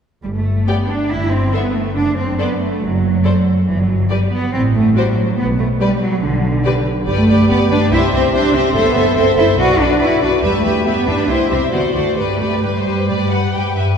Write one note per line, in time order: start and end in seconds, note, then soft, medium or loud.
0.24 0.61 G1 soft
0.24 0.28 G3 soft
0.35 0.67 A3 soft
0.67 0.89 B3 soft
0.67 0.75 G4 soft
0.67 0.76 D5 soft
0.67 0.76 G5 soft
0.89 1.11 D4 medium
1.10 1.47 G1 soft
1.10 1.32 E4 medium
1.32 1.54 C4 medium
1.53 1.75 B3 medium
1.53 1.61 A4 soft
1.53 1.61 C5 soft
1.53 1.62 E5 soft
1.74 1.96 A3 soft
1.96 2.33 F#1 soft
1.96 2.17 D4 medium
2.17 2.39 C4 soft
2.39 2.61 B3 medium
2.39 2.47 A4 soft
2.39 2.47 C5 soft
2.39 2.47 D5 soft
2.60 2.82 A3 medium
2.82 3.18 F#1 soft
2.82 3.46 F#3 medium
3.24 3.33 A4 soft
3.24 3.33 C5 soft
3.24 3.32 D5 soft
3.67 4.03 G1 medium
3.67 3.77 E3 medium
3.77 4.10 F#3 soft
4.10 4.31 G3 medium
4.10 4.18 G4 soft
4.10 4.18 B4 soft
4.10 4.19 D5 soft
4.31 4.53 B3 medium
4.53 4.89 A1 medium
4.53 4.61 C4 medium
4.75 4.95 A3 medium
4.95 5.16 G3 medium
4.95 5.03 F#4 soft
4.95 5.05 C5 soft
4.95 5.05 D5 soft
5.17 5.38 F#3 soft
5.38 5.74 B1 soft
5.38 5.46 B3 medium
5.59 5.67 A3 medium
5.80 6.01 G3 medium
5.80 5.89 G4 soft
5.80 5.89 B4 soft
5.80 5.89 D5 soft
6.01 6.22 F#3 medium
6.22 6.58 B1 medium
6.22 6.85 D3 medium
6.65 6.73 G4 soft
6.65 6.74 B4 soft
6.65 6.73 D5 soft
7.07 7.16 G1 medium
7.07 7.17 G3 medium
7.07 7.27 G4 soft
7.07 7.28 B4 soft
7.07 7.28 D5 medium
7.18 7.49 A3 medium
7.28 7.36 G1 soft
7.28 7.48 G4 soft
7.28 7.49 B4 soft
7.28 7.48 D5 soft
7.49 7.58 G1 soft
7.49 7.57 B3 medium
7.49 7.69 G4 soft
7.49 7.70 B4 soft
7.49 7.69 D5 soft
7.70 7.79 G1 medium
7.70 7.91 D4 medium
7.70 7.90 G4 soft
7.70 7.92 B4 soft
7.70 7.91 D5 soft
7.91 8.00 C2 medium
7.91 8.00 E4 medium
7.91 8.12 G4 soft
7.91 8.12 C5 soft
7.91 8.12 E5 medium
8.12 8.20 C2 medium
8.12 8.33 C4 medium
8.12 8.32 G4 soft
8.12 8.33 C5 soft
8.12 8.32 E5 soft
8.34 8.42 C2 soft
8.34 8.54 D4 medium
8.34 8.54 G4 soft
8.34 8.54 C5 medium
8.34 8.54 E5 soft
8.54 8.62 C2 soft
8.54 8.75 C4 medium
8.54 8.75 G4 soft
8.54 8.74 C5 soft
8.54 8.74 E5 soft
8.75 8.83 F#1 soft
8.75 8.86 A3 medium
8.75 8.95 A4 medium
8.75 8.94 C5 medium
8.75 8.94 E5 medium
8.86 9.16 B3 medium
8.95 9.03 F#1 medium
8.95 9.15 A4 soft
8.95 9.16 C5 soft
8.95 9.15 E5 soft
9.16 9.24 F#1 soft
9.16 9.26 C4 medium
9.16 9.36 A4 soft
9.16 9.37 C5 soft
9.16 9.37 E5 soft
9.37 9.45 F#1 medium
9.37 9.46 E4 medium
9.37 9.58 A4 soft
9.37 9.58 C5 soft
9.37 9.58 E5 soft
9.58 9.66 B1 medium
9.58 9.79 F#4 soft
9.58 9.79 F#4 medium
9.58 9.78 B4 soft
9.58 9.79 D5 soft
9.79 9.87 B1 medium
9.79 10.01 D4 medium
9.79 10.00 F#4 soft
9.79 9.98 B4 soft
9.79 9.99 D5 soft
10.00 10.09 B1 soft
10.00 10.22 E4 medium
10.00 10.21 F#4 soft
10.00 10.21 B4 soft
10.00 10.20 D5 soft
10.22 10.30 B1 soft
10.22 10.30 D4 medium
10.22 10.43 F#4 soft
10.22 10.42 B4 soft
10.22 10.42 D5 soft
10.42 10.50 E2 medium
10.42 10.48 G3 medium
10.42 10.63 G4 soft
10.42 10.64 B4 soft
10.42 10.62 E5 soft
10.54 10.85 A3 medium
10.64 10.72 E2 soft
10.64 10.84 G4 soft
10.64 10.86 B4 soft
10.64 10.85 E5 soft
10.85 10.94 E2 soft
10.85 11.07 B3 medium
10.85 11.06 G4 soft
10.85 11.06 B4 soft
10.85 11.06 E5 soft
11.07 11.15 E2 soft
11.07 11.29 D4 medium
11.07 11.28 G4 soft
11.07 11.28 B4 soft
11.07 11.27 E5 soft
11.28 11.37 C2 soft
11.28 11.50 E4 medium
11.28 11.49 G4 soft
11.28 11.50 C5 soft
11.28 11.48 E5 soft
11.50 11.59 C2 soft
11.50 11.58 C4 medium
11.50 11.72 G4 soft
11.50 11.71 C5 soft
11.50 11.72 E5 soft
11.72 11.81 D2 soft
11.72 11.80 B3 soft
11.72 11.94 F#4 soft
11.72 11.94 C5 soft
11.72 11.92 D5 soft
11.94 12.03 D2 soft
11.94 12.16 A3 soft
11.94 12.17 F#4 soft
11.94 12.17 C5 soft
11.94 12.16 D5 soft
12.17 12.26 G2 soft
12.17 12.62 A3 soft
12.17 12.39 G4 soft
12.17 12.40 B4 soft
12.17 12.39 D5 soft
12.40 12.49 G2 soft
12.40 12.62 G4 soft
12.40 12.62 B4 soft
12.40 12.63 D5 soft
12.63 12.71 G2 soft
12.63 13.53 G3 soft
12.63 12.85 G4 soft
12.63 12.68 B4 soft
12.63 12.86 B4 soft
12.74 13.07 C5 soft
12.87 12.95 G2 soft
12.87 13.08 G4 soft
12.87 13.09 B4 soft
13.08 13.17 G2 soft
13.08 13.30 G4 soft
13.08 13.31 B4 soft
13.08 13.30 D5 soft
13.31 13.40 G2 soft
13.31 13.51 G4 soft
13.31 13.53 B4 soft
13.31 13.53 F#5 soft
13.52 13.61 G2 soft
13.52 13.74 G4 soft
13.52 13.76 B4 soft
13.52 13.76 G5 soft
13.75 13.83 G2 soft
13.75 13.97 G4 soft
13.75 13.98 B4 soft
13.75 13.84 E5 soft